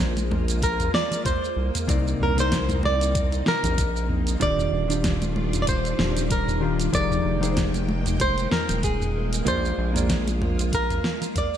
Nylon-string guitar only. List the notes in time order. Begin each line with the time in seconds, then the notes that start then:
Already playing: C5
0.64 A#4
0.95 D5
1.26 C5
2.23 A#4
2.40 C5
2.85 D5
3.48 A#4
4.42 D5
5.62 D5
5.69 C5
6.32 A#4
6.95 D5
8.21 C5
8.52 A#4
8.84 G#4
9.48 C5
10.75 A#4
11.38 D5